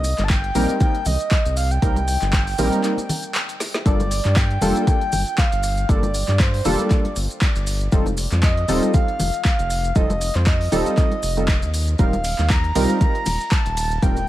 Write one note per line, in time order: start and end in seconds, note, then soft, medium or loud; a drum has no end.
0.00 0.14 C2 loud
0.00 0.25 D#5 loud
0.04 open hi-hat loud
0.04 maracas medium
0.18 0.51 G1 loud
0.18 clap soft
0.18 closed hi-hat soft
0.18 high conga medium
0.18 maracas soft
0.24 0.31 A5 medium
0.30 0.80 G5 loud
0.30 kick loud
0.30 clap loud
0.30 closed hi-hat medium
0.30 maracas medium
0.44 closed hi-hat soft
0.55 0.66 A#1 medium
0.55 0.78 G3 loud
0.55 0.78 A#3 loud
0.55 0.78 C4 loud
0.55 0.78 D#4 loud
0.55 0.78 A#4 loud
0.55 open hi-hat loud
0.55 low conga medium
0.55 maracas medium
0.69 closed hi-hat medium
0.69 high conga medium
0.69 maracas soft
0.80 0.95 G3 medium
0.80 0.95 A#3 medium
0.80 0.95 C4 medium
0.80 0.95 D#4 medium
0.80 0.95 A#4 medium
0.80 1.08 G5 loud
0.80 kick loud
0.80 closed hi-hat medium
0.80 low conga medium
0.80 maracas soft
0.95 closed hi-hat soft
1.06 1.17 C2 loud
1.06 1.56 D#5 loud
1.06 open hi-hat loud
1.06 high conga medium
1.06 low conga medium
1.06 maracas medium
1.20 closed hi-hat soft
1.20 maracas soft
1.31 kick loud
1.31 clap loud
1.31 closed hi-hat medium
1.31 maracas medium
1.46 1.78 C2 medium
1.46 closed hi-hat medium
1.46 maracas soft
1.57 1.73 F5 loud
1.57 open hi-hat loud
1.57 maracas medium
1.71 3.60 G5 loud
1.71 closed hi-hat soft
1.71 maracas soft
1.82 2.17 C2 loud
1.82 1.96 G3 medium
1.82 1.96 A#3 medium
1.82 1.97 C4 medium
1.82 1.97 D#4 medium
1.82 1.97 A#4 loud
1.82 kick loud
1.82 closed hi-hat medium
1.82 maracas medium
1.96 closed hi-hat soft
1.96 high conga medium
1.96 maracas soft
2.08 open hi-hat loud
2.08 maracas medium
2.22 2.55 G1 loud
2.22 clap soft
2.22 closed hi-hat soft
2.22 high conga medium
2.22 maracas soft
2.33 kick loud
2.33 clap loud
2.33 closed hi-hat medium
2.33 maracas medium
2.47 open hi-hat medium
2.47 maracas soft
2.58 2.70 A#1 medium
2.58 2.81 G3 loud
2.58 2.81 A#3 medium
2.58 2.81 C4 medium
2.58 2.81 D#4 loud
2.58 2.81 A#4 loud
2.58 open hi-hat loud
2.58 low conga medium
2.58 maracas medium
2.72 closed hi-hat medium
2.72 high conga medium
2.72 maracas soft
2.84 2.98 G3 medium
2.84 2.98 A#3 medium
2.84 2.98 C4 medium
2.84 2.98 D#4 medium
2.84 2.98 A#4 medium
2.84 clap soft
2.84 closed hi-hat medium
2.84 maracas soft
2.97 closed hi-hat soft
2.97 high conga medium
2.97 maracas soft
3.09 open hi-hat loud
3.09 low conga medium
3.09 maracas medium
3.23 closed hi-hat soft
3.23 maracas soft
3.35 clap loud
3.35 closed hi-hat medium
3.35 maracas medium
3.49 closed hi-hat medium
3.49 maracas soft
3.60 snare medium
3.60 open hi-hat loud
3.60 maracas medium
3.74 snare medium
3.74 closed hi-hat soft
3.74 maracas soft
3.85 4.20 G1 loud
3.85 4.00 G3 medium
3.85 4.00 A#3 medium
3.85 4.00 D4 medium
3.85 4.00 F4 medium
3.85 4.00 A4 medium
3.85 4.38 D5 loud
3.85 kick loud
3.85 closed hi-hat medium
3.85 maracas medium
4.00 closed hi-hat soft
4.00 high conga loud
4.00 maracas soft
4.11 open hi-hat loud
4.11 maracas loud
4.25 4.58 G2 loud
4.25 clap soft
4.25 closed hi-hat soft
4.25 high conga medium
4.25 maracas soft
4.36 4.87 G5 loud
4.36 kick loud
4.36 clap loud
4.36 closed hi-hat medium
4.36 maracas medium
4.51 closed hi-hat soft
4.61 4.73 F1 medium
4.61 4.84 G3 loud
4.61 4.85 A#3 medium
4.61 4.85 D4 medium
4.61 4.85 F4 medium
4.61 4.85 A4 loud
4.61 open hi-hat loud
4.61 low conga medium
4.61 maracas loud
4.75 closed hi-hat medium
4.75 high conga medium
4.75 maracas soft
4.87 5.01 G3 medium
4.87 5.01 A#3 medium
4.87 5.02 D4 medium
4.87 5.02 F4 medium
4.87 5.02 A4 medium
4.87 5.40 G5 loud
4.87 kick loud
4.87 closed hi-hat medium
4.87 low conga medium
4.87 maracas medium
5.01 closed hi-hat soft
5.12 5.24 G1 medium
5.12 open hi-hat loud
5.12 high conga medium
5.12 low conga medium
5.12 maracas medium
5.27 closed hi-hat soft
5.27 maracas soft
5.38 5.91 F5 loud
5.38 kick loud
5.38 clap loud
5.38 closed hi-hat medium
5.38 maracas medium
5.52 5.85 G1 medium
5.52 closed hi-hat medium
5.52 maracas soft
5.63 open hi-hat loud
5.63 maracas loud
5.77 closed hi-hat soft
5.77 maracas soft
5.89 6.24 G1 loud
5.89 6.03 G3 medium
5.89 6.03 A#3 medium
5.89 6.03 D4 medium
5.89 6.03 F4 medium
5.89 6.03 A4 loud
5.89 6.41 D5 loud
5.89 kick loud
5.89 closed hi-hat medium
5.89 maracas medium
6.03 closed hi-hat soft
6.03 high conga medium
6.03 maracas soft
6.14 open hi-hat loud
6.14 maracas loud
6.28 6.61 G2 loud
6.28 clap soft
6.28 closed hi-hat soft
6.28 high conga medium
6.28 maracas soft
6.40 6.67 C5 loud
6.40 kick loud
6.40 clap loud
6.40 closed hi-hat medium
6.40 maracas medium
6.54 open hi-hat medium
6.65 6.76 F1 medium
6.65 6.88 G3 loud
6.65 6.88 A#3 loud
6.65 6.88 D4 medium
6.65 6.88 F4 loud
6.65 6.88 A4 loud
6.65 7.16 D5 medium
6.65 open hi-hat loud
6.65 low conga medium
6.65 maracas medium
6.79 closed hi-hat medium
6.79 high conga medium
6.79 maracas soft
6.90 7.05 G3 medium
6.90 7.05 A#3 medium
6.90 7.05 D4 medium
6.90 7.05 A4 medium
6.90 kick loud
6.90 clap soft
6.90 closed hi-hat medium
6.90 maracas medium
7.05 closed hi-hat soft
7.05 high conga medium
7.16 7.27 G1 loud
7.16 open hi-hat loud
7.16 maracas medium
7.30 closed hi-hat soft
7.30 maracas soft
7.41 kick loud
7.41 clap loud
7.41 closed hi-hat medium
7.41 maracas medium
7.56 7.89 G1 medium
7.56 closed hi-hat medium
7.56 maracas soft
7.67 open hi-hat loud
7.67 maracas loud
7.81 closed hi-hat soft
7.81 maracas soft
7.92 8.27 F1 loud
7.92 8.07 G3 medium
7.92 8.07 C4 medium
7.92 8.07 D#4 medium
7.92 8.07 F4 medium
7.92 8.07 A4 loud
7.92 kick loud
7.92 closed hi-hat medium
7.92 maracas medium
8.06 closed hi-hat soft
8.06 high conga medium
8.06 maracas soft
8.17 open hi-hat loud
8.17 maracas loud
8.32 8.65 F2 loud
8.32 clap soft
8.32 closed hi-hat soft
8.32 high conga medium
8.32 maracas soft
8.43 8.96 D#5 loud
8.43 kick loud
8.43 clap loud
8.43 closed hi-hat medium
8.43 maracas medium
8.57 closed hi-hat soft
8.68 8.80 D#1 medium
8.68 8.91 G3 loud
8.68 8.91 C4 loud
8.68 8.91 D#4 medium
8.68 8.91 F4 medium
8.68 8.91 A4 loud
8.68 open hi-hat loud
8.68 low conga medium
8.68 maracas medium
8.83 closed hi-hat medium
8.83 high conga medium
8.83 maracas soft
8.94 9.08 G3 medium
8.94 9.08 C4 medium
8.94 9.08 F4 medium
8.94 9.08 A4 medium
8.94 9.44 F5 loud
8.94 kick loud
8.94 closed hi-hat medium
8.94 low conga medium
8.94 maracas medium
9.08 closed hi-hat soft
9.19 9.31 F1 medium
9.19 open hi-hat loud
9.19 high conga medium
9.19 low conga medium
9.19 maracas loud
9.34 closed hi-hat soft
9.34 maracas soft
9.45 9.97 F5 loud
9.45 kick loud
9.45 clap loud
9.45 closed hi-hat medium
9.45 maracas medium
9.59 9.92 F1 medium
9.59 closed hi-hat soft
9.59 maracas soft
9.70 open hi-hat loud
9.70 maracas loud
9.85 closed hi-hat soft
9.85 maracas soft
9.95 10.31 F1 loud
9.95 10.10 G3 medium
9.95 10.10 C4 medium
9.95 10.10 D#4 medium
9.95 10.10 F4 medium
9.95 10.10 A4 loud
9.95 10.37 D#5 loud
9.95 kick loud
9.95 closed hi-hat medium
9.95 maracas medium
10.10 closed hi-hat soft
10.10 high conga loud
10.10 maracas soft
10.21 open hi-hat loud
10.21 maracas medium
10.35 10.68 F2 loud
10.35 10.48 C5 medium
10.35 clap soft
10.35 closed hi-hat soft
10.35 high conga medium
10.35 maracas soft
10.46 10.86 D#5 loud
10.46 kick loud
10.46 clap loud
10.46 closed hi-hat medium
10.46 maracas medium
10.61 open hi-hat medium
10.72 10.83 D#1 medium
10.72 10.95 G3 loud
10.72 10.95 C4 loud
10.72 10.95 D#4 medium
10.72 10.95 F4 medium
10.72 10.95 A4 loud
10.72 open hi-hat loud
10.72 low conga medium
10.72 maracas loud
10.86 11.70 D#5 loud
10.86 closed hi-hat medium
10.86 high conga medium
10.86 maracas soft
10.97 11.12 G3 medium
10.97 11.12 D#4 medium
10.97 11.12 F4 medium
10.97 11.12 A4 medium
10.97 kick loud
10.97 clap soft
10.97 closed hi-hat medium
10.97 maracas medium
11.11 closed hi-hat soft
11.11 high conga medium
11.23 11.64 F1 loud
11.23 open hi-hat loud
11.23 maracas loud
11.37 11.48 G3 medium
11.37 11.48 C4 medium
11.37 11.48 D#4 medium
11.37 11.49 F4 medium
11.37 11.49 A4 medium
11.37 closed hi-hat soft
11.37 maracas soft
11.48 kick loud
11.48 clap loud
11.48 closed hi-hat medium
11.48 maracas medium
11.62 11.95 D#2 medium
11.62 closed hi-hat soft
11.62 maracas soft
11.74 open hi-hat loud
11.74 maracas medium
11.88 closed hi-hat soft
11.88 maracas soft
11.99 12.34 D#1 loud
11.99 12.13 G3 medium
11.99 12.13 C4 medium
11.99 12.13 D#4 medium
11.99 12.13 F4 medium
11.99 12.14 A#4 loud
11.99 12.51 F5 loud
11.99 kick loud
11.99 closed hi-hat medium
11.99 maracas medium
12.13 closed hi-hat soft
12.13 high conga medium
12.13 maracas soft
12.24 open hi-hat loud
12.24 ride medium
12.24 maracas medium
12.39 12.72 D#2 loud
12.39 clap soft
12.39 closed hi-hat soft
12.39 high conga medium
12.39 maracas soft
12.50 13.00 A#5 loud
12.50 kick loud
12.50 clap loud
12.50 closed hi-hat medium
12.50 maracas medium
12.64 closed hi-hat soft
12.75 12.87 C2 medium
12.75 12.98 G3 loud
12.75 12.98 C4 medium
12.75 12.98 D#4 medium
12.75 12.98 F4 loud
12.75 12.98 A#4 loud
12.75 open hi-hat loud
12.75 ride medium
12.75 low conga medium
12.75 maracas medium
12.89 closed hi-hat medium
12.89 high conga medium
12.89 maracas soft
13.01 13.15 G3 medium
13.01 13.15 C4 medium
13.01 13.15 D#4 medium
13.01 13.15 F4 medium
13.01 13.15 A#4 medium
13.01 13.53 A#5 loud
13.01 kick loud
13.01 closed hi-hat medium
13.01 low conga medium
13.01 maracas medium
13.15 closed hi-hat soft
13.26 13.37 D#1 medium
13.26 open hi-hat loud
13.26 ride medium
13.26 high conga medium
13.26 low conga medium
13.26 maracas medium
13.40 closed hi-hat soft
13.40 maracas soft
13.52 14.04 A5 loud
13.52 kick loud
13.52 clap loud
13.52 closed hi-hat medium
13.52 maracas medium
13.66 13.99 D#1 medium
13.66 closed hi-hat soft
13.66 maracas soft
13.77 open hi-hat loud
13.77 ride medium
13.77 maracas medium
13.91 closed hi-hat soft
13.91 maracas soft
14.02 14.29 D#1 loud
14.02 14.17 G3 medium
14.02 14.17 C4 medium
14.02 14.17 D#4 medium
14.02 14.17 F4 medium
14.02 14.17 A#4 loud
14.02 14.29 G5 loud
14.02 kick loud
14.02 closed hi-hat medium
14.02 maracas medium
14.17 closed hi-hat soft
14.17 high conga medium
14.17 maracas soft